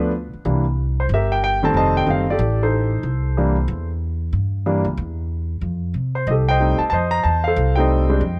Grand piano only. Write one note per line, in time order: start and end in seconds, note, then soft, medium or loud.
0.00 0.10 F3 medium
0.00 0.10 A3 medium
0.00 0.11 B3 medium
0.00 0.11 D4 medium
0.00 0.10 F4 soft
0.45 0.63 E3 medium
0.45 0.63 G3 medium
0.45 0.63 A#3 soft
0.45 0.63 D4 medium
1.00 1.05 C5 medium
1.14 1.72 G4 medium
1.14 1.73 A#4 medium
1.14 1.32 E5 medium
1.32 1.42 G5 medium
1.44 1.63 G5 medium
1.63 2.05 D#3 medium
1.63 2.05 G3 medium
1.63 2.05 A3 medium
1.63 2.05 C4 medium
1.63 1.75 A5 medium
1.77 2.36 C5 medium
1.77 2.36 D#5 medium
1.77 1.94 A5 loud
1.97 2.08 G5 medium
2.07 2.25 D#3 medium
2.07 2.25 G3 medium
2.07 2.25 A3 soft
2.07 2.25 C4 medium
2.07 2.29 F5 medium
2.30 2.90 G4 medium
2.30 2.61 A4 medium
2.30 2.62 D5 medium
2.63 3.03 D#4 medium
2.63 3.86 A4 medium
2.63 3.86 C5 medium
3.37 3.55 E3 medium
3.37 3.55 G3 medium
3.37 3.55 A#3 medium
3.37 3.55 D4 medium
4.66 4.84 E3 medium
4.66 4.84 G3 medium
4.66 4.84 A#3 medium
4.66 4.84 D4 medium
6.15 6.28 C5 medium
6.27 6.90 G4 medium
6.27 6.90 A4 medium
6.27 6.32 D#5 medium
6.49 6.91 C5 medium
6.49 6.92 D#5 medium
6.49 6.78 G5 medium
6.59 6.78 G3 medium
6.59 6.78 A3 soft
6.59 6.78 C4 soft
6.59 6.78 D#4 medium
6.79 6.83 A5 medium
6.90 7.46 C5 medium
6.90 6.95 A5 medium
6.94 7.54 D#5 medium
7.11 7.23 A#5 medium
7.24 7.43 A5 medium
7.44 8.07 A4 medium
7.44 7.79 C5 medium
7.44 7.74 F5 medium
7.76 8.07 G3 medium
7.76 8.08 A3 medium
7.76 8.08 C4 medium
7.76 8.08 D#4 medium
7.76 8.39 G5 medium
7.80 8.39 C5 medium
7.80 8.39 D#5 medium
8.09 8.20 G3 medium
8.09 8.21 G#3 medium
8.09 8.21 C4 medium
8.09 8.21 D4 medium